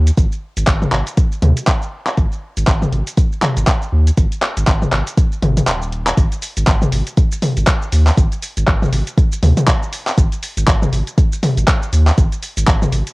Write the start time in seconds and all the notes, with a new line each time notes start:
Already playing: D#2
0.07 closed hi-hat, shaker
0.17 G#1, kick, closed hi-hat, shaker
0.32 shaker
0.57 G#1, closed hi-hat, shaker
0.67 G#1, kick, clap, closed hi-hat, shaker
0.82 mid tom, shaker
0.92 G#1, clap, closed hi-hat
1.07 closed hi-hat, shaker
1.17 kick, closed hi-hat, shaker
1.32 shaker
1.42 D#2, closed hi-hat, mid tom
1.57 closed hi-hat, shaker
1.67 kick, clap, closed hi-hat, shaker
1.82 shaker
2.07 clap, closed hi-hat, shaker
2.17 G#1, kick, closed hi-hat, shaker
2.32 shaker
2.57 G#1, closed hi-hat, shaker
2.67 G#1, kick, clap, closed hi-hat, shaker
2.82 mid tom, shaker
2.92 G#1, closed hi-hat
3.07 closed hi-hat, shaker
3.17 kick, closed hi-hat, shaker
3.32 shaker
3.43 clap, closed hi-hat, mid tom
3.57 G#1, closed hi-hat, shaker
3.67 kick, clap, closed hi-hat, shaker
3.82 shaker
3.93 D#2
4.07 closed hi-hat, shaker
4.17 G#1, kick, closed hi-hat, shaker
4.32 closed hi-hat, shaker
4.42 clap
4.57 G#1, closed hi-hat, shaker
4.67 G#1, kick, clap, closed hi-hat, shaker
4.82 mid tom, shaker
4.93 G#1, clap, closed hi-hat
5.07 closed hi-hat, shaker
5.18 kick, closed hi-hat, shaker
5.32 shaker
5.42 G#1, closed hi-hat, mid tom
5.57 closed hi-hat, mid tom, shaker
5.67 D#1, clap, closed hi-hat, shaker
5.82 shaker
5.93 closed hi-hat
6.07 clap, closed hi-hat, shaker
6.17 G#1, kick, closed hi-hat, shaker
6.32 closed hi-hat, shaker
6.42 open hi-hat, shaker
6.57 G#1, closed hi-hat, shaker
6.67 G#1, kick, clap, closed hi-hat, shaker
6.82 mid tom, shaker
6.92 G#1, open hi-hat, shaker
7.07 closed hi-hat, shaker
7.17 kick, closed hi-hat, shaker
7.32 shaker
7.42 open hi-hat, mid tom, shaker
7.57 G#1, closed hi-hat, shaker
7.67 kick, clap, closed hi-hat, shaker
7.82 shaker
7.92 D#2, open hi-hat, shaker
8.07 clap, open hi-hat, shaker
8.17 G#1, kick, closed hi-hat, shaker
8.32 closed hi-hat, shaker
8.42 open hi-hat, shaker
8.57 G#1, closed hi-hat, shaker
8.68 G#1, kick, clap, closed hi-hat, shaker
8.82 mid tom, shaker
8.93 G#1, open hi-hat, shaker
9.07 closed hi-hat, shaker
9.17 kick, closed hi-hat, shaker
9.32 shaker
9.43 D#2, open hi-hat, mid tom, shaker
9.57 closed hi-hat, mid tom, shaker
9.68 kick, clap, closed hi-hat, shaker
9.83 shaker
9.93 open hi-hat, shaker
10.07 clap, open hi-hat, shaker
10.18 G#1, kick, closed hi-hat, shaker
10.32 closed hi-hat, shaker
10.43 open hi-hat, shaker
10.57 G#1, closed hi-hat, shaker
10.68 G#1, kick, clap, closed hi-hat, shaker
10.82 mid tom, shaker
10.92 G#1, open hi-hat, shaker
11.07 closed hi-hat, shaker
11.18 kick, closed hi-hat, shaker
11.32 shaker
11.43 open hi-hat, mid tom, shaker
11.57 G#1, closed hi-hat, shaker
11.68 kick, clap, closed hi-hat, shaker
11.83 shaker
11.93 D#2, open hi-hat, shaker
12.07 clap, open hi-hat, shaker
12.18 G#1, kick, closed hi-hat, shaker
12.32 closed hi-hat, shaker
12.42 open hi-hat, shaker
12.57 G#1, closed hi-hat, shaker
12.67 G#1, kick, clap, closed hi-hat, shaker
12.82 mid tom, shaker
12.92 G#1, open hi-hat, shaker
13.07 closed hi-hat, shaker